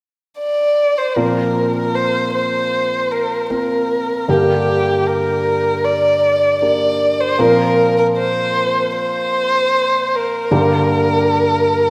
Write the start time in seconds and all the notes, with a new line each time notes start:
0.38 D5
0.98 C5
1.16 A#2 F3 A#3 C4 F4 A#4
1.76 A#4
1.95 C5
2.34 C5
3.11 A#4
3.50 A#3 C4 F4 A#4
4.28 G2 D3 A#3 D4 G4 A#4
5.07 A#4
5.84 D5
6.62 A#3 D4 G4 A#4 D5
7.20 C5
7.38 A#2 F3 A#3 C4 F4 A#4
7.98 A#4
8.17 C5
8.96 C5
10.15 A#4
10.51 G2 D3 A#3 D4 G4 A#4